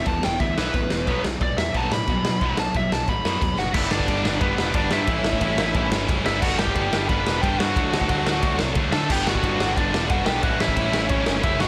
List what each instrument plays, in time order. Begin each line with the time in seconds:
0.06 picked electric bass E1, distorted electric guitar E3 B3, lead electric guitar A5, kick, crash
0.23 picked electric bass E1, distorted electric guitar E3 B3, lead electric guitar G5, snare
0.40 picked electric bass D2, distorted electric guitar E3 B3, lead electric guitar E5, kick, crash
0.57 picked electric bass B1, distorted electric guitar E3 B3 E4, lead electric guitar B4, snare
0.74 picked electric bass A1, distorted electric guitar E3 B3, kick, crash
0.90 picked electric bass E1, distorted electric guitar E3 B3, snare
1.07 picked electric bass B1, distorted electric guitar B2 F#3 B3, kick, crash
1.24 picked electric bass B1, distorted electric guitar B2 F#3, snare
1.41 picked electric bass B1, distorted electric guitar B2 F#3, lead electric guitar D5, kick, crash
1.57 picked electric bass E2, distorted electric guitar B2 F#3, lead electric guitar E5, snare
1.74 picked electric bass B1, distorted electric guitar B2 F#3 B3, lead electric guitar A5, kick, crash
1.91 picked electric bass A2, distorted electric guitar B2 F#3, lead electric guitar B5, snare
2.07 picked electric bass B2, distorted electric guitar B2 F#3, kick, crash
2.25 distorted electric guitar B2 F#3, snare
2.41 picked electric bass B1, distorted electric guitar B2 F#3 B3, kick, crash
2.56 picked electric bass B1, distorted electric guitar B2 F#3, lead electric guitar A5, snare
2.74 picked electric bass B1, distorted electric guitar B2 F#3, lead electric guitar E5, kick, crash
2.91 picked electric bass B1, distorted electric guitar B2 F#3, lead electric guitar A5, snare
3.08 picked electric bass A1, distorted electric guitar B2 F#3, lead electric guitar B5, kick, crash
3.25 picked electric bass F#2, distorted electric guitar B2 F#3 B3, snare
3.41 picked electric bass E2, distorted electric guitar B2 F#3, kick, crash
3.58 picked electric bass F#1, distorted electric guitar B2 F#3, lead electric guitar F#4 F#5, snare
3.73 picked electric bass G1, distorted electric guitar G2 D3 G3 B3 D4 G4, lead electric guitar E4 E5, kick, crash
3.91 picked electric bass G1, lead electric guitar D4 D5, snare
3.99 kick
4.07 picked electric bass G1, distorted electric guitar G2 D3 G3 B3 D4 G4, kick, ride
4.23 picked electric bass G1, distorted electric guitar G2 D3 G3 B3 D4 G4, snare
4.40 picked electric bass G1, distorted electric guitar G2 D3 G3 B3 D4 G4, lead electric guitar B3 B4, kick, ride
4.58 picked electric bass E1, snare
4.74 picked electric bass G1, distorted electric guitar G2 D3 G3 B3 D4 G4, lead electric guitar D4 D5, kick, ride
4.90 picked electric bass G2, distorted electric guitar G2 D3 G3 B3 D4 G4, lead electric guitar E4 E5, snare
5.07 picked electric bass A1, distorted electric guitar A2 E3 A3 C#4 E4, kick, ride
5.23 picked electric bass A1, snare
5.33 kick
5.41 picked electric bass A1, distorted electric guitar A2 E3 A3 C#4 E4, kick, ride
5.57 picked electric bass A1, distorted electric guitar E3 A3 C#4 E4, snare
5.61 distorted electric guitar A2
5.74 picked electric bass A1, distorted electric guitar A2 E3 A3 C#4 E4, kick, ride
5.91 picked electric bass G1, snare
6.08 picked electric bass F#1, distorted electric guitar A2 E3 A3 C#4 E4, kick, ride
6.25 picked electric bass G1, distorted electric guitar G2 D3 G3 B3 D4, lead electric guitar E4 E5, snare
6.42 picked electric bass G1, distorted electric guitar G2 D3 G3 B3 D4, lead electric guitar F#4 F#5, kick, crash
6.58 picked electric bass G1, lead electric guitar G4 G5, snare
6.67 kick
6.74 picked electric bass G1, distorted electric guitar G2 D3 G3 B3 D4, kick, ride
6.91 picked electric bass G1, distorted electric guitar G2 D3 G3 B3 D4, snare
7.08 picked electric bass G1, distorted electric guitar G2 D3 G3 B3 D4, lead electric guitar B4 B5, kick, ride
7.26 picked electric bass E1, snare
7.41 picked electric bass G1, distorted electric guitar G2 D3 G3 B3 D4, lead electric guitar G4 G5, kick, ride
7.58 distorted electric guitar G2 D3 G3 B3 D4, picked electric bass G2, lead electric guitar F#4 F#5, snare
7.76 picked electric bass D2, distorted electric guitar D3 F#3 A3 D4, kick, ride
7.93 picked electric bass D2, snare
8.01 kick
8.09 picked electric bass D2, distorted electric guitar D3 F#3 A3 D4, kick, ride
8.26 picked electric bass D2, distorted electric guitar D3 F#3 A3 D4, snare
8.43 picked electric bass D2, distorted electric guitar D3 F#3 A3 D4, kick, ride
8.59 picked electric bass C2, snare
8.75 picked electric bass D2, distorted electric guitar D3 F#3 A3 D4, kick, ride
8.92 picked electric bass D3, distorted electric guitar D3 F#3 A3 D4, lead electric guitar A4 A5, snare
9.10 picked electric bass G1, distorted electric guitar G2 D3 G3 B3 D4, lead electric guitar G4 G5, kick, crash
9.27 picked electric bass G1, lead electric guitar F#4 F#5, snare
9.35 kick
9.43 picked electric bass G1, distorted electric guitar G2 D3 G3 B3 D4, kick, ride
9.58 picked electric bass G1, distorted electric guitar G2 D3 G3 B3 D4, snare
9.77 picked electric bass G1, distorted electric guitar G2 D3 G3 B3 D4, lead electric guitar D4 D5, kick, ride
9.93 picked electric bass E1, snare
10.10 picked electric bass G1, distorted electric guitar G2 D3 G3 B3 D4, lead electric guitar F#4 F#5, kick, ride
10.26 picked electric bass B1, distorted electric guitar G2 D3 G3 B3 D4, lead electric guitar G4 G5, snare
10.43 picked electric bass A1, distorted electric guitar A2 E3 A3 C#4 E4, lead electric guitar F#4 F#5, kick, ride
10.60 picked electric bass A1, lead electric guitar E4 E5, snare
10.68 kick
10.76 picked electric bass A1, distorted electric guitar A2 E3 A3 C#4 E4, kick, ride
10.93 picked electric bass A1, distorted electric guitar A2 E3 A3 C#4 E4, snare
11.09 picked electric bass A1, distorted electric guitar A2 E3 A3 C#4 E4, lead electric guitar C#4 C#5, kick, ride
11.26 picked electric bass G1, snare
11.43 picked electric bass F#1, distorted electric guitar A2 E3 A3 C#4 E4, lead electric guitar E4 E5, kick, ride
11.60 picked electric bass G1, distorted electric guitar G2 D3 G3 B3 D4, lead electric guitar F#4 F#5, snare